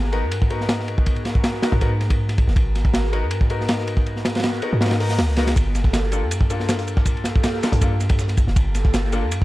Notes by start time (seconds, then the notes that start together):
Already playing: G#1
0.04 snare
0.12 B3 D#4 F#4 A#4, ride
0.23 G#2
0.31 ride
0.42 kick
0.50 B3 D#4 F#4 A#4, ride
0.61 snare
0.69 snare, ride
0.79 snare
0.88 ride
0.98 kick
1.06 kick, ride
1.16 ride
1.25 snare, ride
1.35 kick
1.44 snare, ride
1.54 snare
1.62 B3 D#4 F#4 A#4, snare, ride
1.72 G#2, kick
1.81 B3 D#4 F#4 A#4, kick, ride
2.01 snare, ride
2.10 kick, ride
2.28 snare, ride
2.38 kick, ride
2.48 F#1, snare
2.56 G#1, kick, ride
2.75 snare, ride
2.85 kick
2.94 snare, ride
3.04 snare
3.13 B3 D#4 F#4 A#4, ride
3.23 G#2
3.31 ride
3.41 kick
3.50 B3 D#4 F#4 A#4, ride
3.61 snare
3.68 snare, ride
3.78 snare
3.87 ride
3.97 kick
4.06 ride
4.16 snare
4.25 snare, ride
4.35 snare, ride
4.40 snare, ride
4.43 snare, ride
4.53 snare
4.62 B3 D#4 F#4 A#4, ride
4.73 G#2
4.81 B3 D#4 F#4 A#4, snare, ride
4.86 snare, ride
4.91 snare, ride
5.00 B3 D#4 F#4 A#4, open hi-hat
5.09 snare
5.18 C#2, snare, ride
5.28 snare
5.36 B3 D#4 F#4 A#4, snare, ride
5.47 snare, ride
5.56 G1, kick, ride, shaker
5.75 snare, ride, shaker
5.84 kick, snare
5.93 snare, ride, shaker
6.03 snare
6.12 A#3 D4 F4 A4, ride, shaker
6.22 G2
6.31 ride, shaker
6.41 kick
6.50 A#3 D4 F4 A4, ride, shaker
6.60 snare
6.69 snare, ride, shaker
6.78 snare, closed hi-hat
6.87 ride, shaker
6.97 kick, snare
7.05 kick, ride, shaker
7.17 ride
7.24 snare, ride, shaker
7.36 kick
7.43 snare, ride, shaker
7.54 snare
7.63 A#3 D4 F4 A4, snare, ride, shaker
7.72 G2, kick, closed hi-hat
7.81 A#3 D4 F4 A4, kick, ride, shaker
8.00 snare, ride, shaker
8.09 kick, ride
8.19 snare, shaker
8.27 snare, ride
8.37 kick, ride, shaker
8.47 F1, snare
8.56 G1, kick, ride, shaker
8.75 snare, ride, shaker
8.85 kick, snare
8.94 snare, ride, shaker
9.04 snare
9.12 A#3 D4 F4 A4, ride, shaker
9.23 G2
9.31 ride, shaker